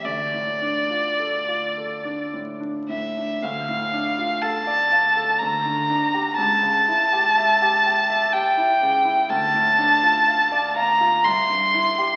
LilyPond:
<<
  \new Staff \with { instrumentName = "Violin" } { \time 3/4 \key d \minor \tempo 4 = 61 d''2 r8 e''8 | f''4 a''4 bes''4 | a''2 g''4 | a''4. bes''8 c'''4 | }
  \new Staff \with { instrumentName = "Grand piano" } { \time 3/4 \key d \minor d,16 a,16 d'16 f'16 a'16 f'16 a'16 d'16 a,16 d'16 a,16 d'16 | d,16 a,16 d'16 f'16 a'16 d''16 f''16 a'16 d,16 d16 d'16 g'16 | cis,16 cis16 e'16 g'16 e''16 g'16 g''16 e''16 g'16 e'16 cis16 e'16 | d,16 a,16 d'16 f'16 f''16 d''16 f''16 f'16 c,16 g,16 e'16 g'16 | }
>>